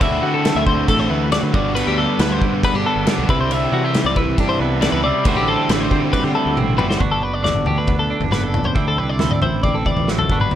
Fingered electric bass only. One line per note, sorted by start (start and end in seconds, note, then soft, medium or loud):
0.01 0.19 D2 medium
0.22 0.50 D3 medium
0.55 0.83 D2 medium
0.88 1.07 A1 medium
1.10 1.37 D2 medium
1.43 1.52 D3 medium
1.54 1.81 G1 medium
1.87 2.05 D2 medium
2.19 2.38 D2 loud
2.42 2.60 G2 loud
2.74 2.83 G2 medium
2.96 3.05 G1 loud
3.18 3.27 B1 loud
3.29 3.65 C2 loud
3.72 4.00 C3 medium
4.04 4.32 C2 medium
4.38 4.56 G2 loud
4.60 4.87 C2 medium
4.92 5.11 C#2 loud
5.25 5.35 D2 loud
5.36 5.55 A1 medium
5.69 5.87 A1 loud
5.91 6.10 D3 loud
6.24 6.33 D3 medium
6.46 6.55 D2 loud
6.57 6.77 A1 medium
6.78 6.98 G1 medium
7.00 7.22 G1 medium
7.22 7.50 F#1 medium
7.55 7.64 G1 medium
7.65 8.12 D2 medium
8.20 8.67 F#1 medium
8.76 8.99 D2 medium
8.97 9.25 C2 medium
9.31 9.40 D2 medium
9.42 9.88 A1 medium
9.96 10.24 A1 medium
10.29 10.55 G1 medium